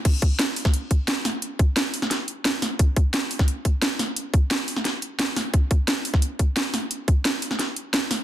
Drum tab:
CC |x---------------|----------------|----------------|----------------|
HH |x-x-x-o-x-x-x-o-|x-x-x-o-x-x-x-o-|x-x-x-o-x-x-x-o-|x-x-x-o-x-x-x-o-|
SD |----o--o----o-o-|----o--oo---o-o-|----o--o----o-o-|----o--oo---o-o-|
BD |o-o----o--o-----|--o-------------|o-o----o--o-----|--o-------------|

CC |----------------|----------------|
HH |x-x-x-o-x-x-x-o-|x-x-x-o-x-x-x-o-|
SD |----o--o----o-o-|----o--oo---o-o-|
BD |o-o----o--o-----|--o-------------|